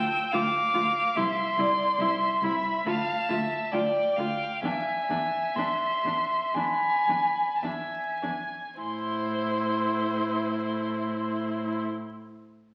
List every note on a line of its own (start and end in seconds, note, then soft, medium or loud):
0.00 0.33 G5 medium
0.00 0.36 E6 medium
0.31 0.41 D2 medium
0.31 0.41 F4 medium
0.31 1.17 F5 medium
0.31 1.18 D6 medium
0.74 0.82 D2 medium
0.74 0.82 F4 medium
1.16 1.24 C2 medium
1.16 1.25 E4 medium
1.16 1.61 E5 medium
1.16 2.45 C6 medium
1.57 1.65 C2 medium
1.57 1.66 E4 soft
1.57 2.01 D5 medium
1.99 2.07 C2 medium
1.99 2.09 E4 medium
1.99 2.42 E5 medium
2.42 2.50 C2 medium
2.42 2.51 E4 medium
2.42 2.91 E5 medium
2.42 2.88 B5 medium
2.85 2.93 D2 medium
2.85 2.94 F4 medium
2.85 3.74 A5 medium
2.89 3.31 F5 medium
3.29 3.38 D2 medium
3.29 3.37 F4 medium
3.29 3.73 E5 medium
3.72 3.81 D2 medium
3.72 3.81 F4 medium
3.72 4.17 D5 medium
3.72 4.63 G5 medium
4.16 4.26 D2 medium
4.16 4.27 F4 soft
4.16 4.62 F5 medium
4.62 4.70 E2 medium
4.62 4.72 D4 soft
4.62 5.08 E5 medium
4.62 5.58 G#5 medium
5.09 5.17 E2 medium
5.09 5.18 D4 soft
5.09 6.56 E5 medium
5.56 5.64 E2 soft
5.56 5.66 D4 soft
5.56 6.59 C6 medium
6.05 6.13 E2 soft
6.05 6.14 D4 soft
6.54 6.63 E2 soft
6.54 6.64 D4 soft
6.54 7.64 G#5 medium
6.54 7.57 B5 medium
7.08 7.16 E2 soft
7.08 7.17 D4 soft
7.56 7.68 A5 soft
7.63 7.71 E2 soft
7.63 7.72 D4 soft
7.63 8.22 E5 soft
7.63 8.82 G#5 medium
8.22 8.31 E2 soft
8.22 8.30 D4 soft
8.78 11.83 A2 soft
8.78 11.83 E4 soft
8.78 11.81 C5 medium
8.83 11.86 C6 medium